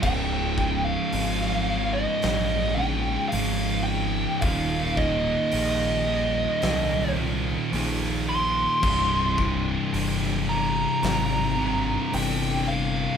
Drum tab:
CC |x---------------|----------------|x---------------|
HH |----o---o---o---|o---o---o---o---|----o---o---o---|
SD |-----o--o-------|--------o-------|-----o--o-------|
BD |o-o-------------|o-o-------------|o-o-------------|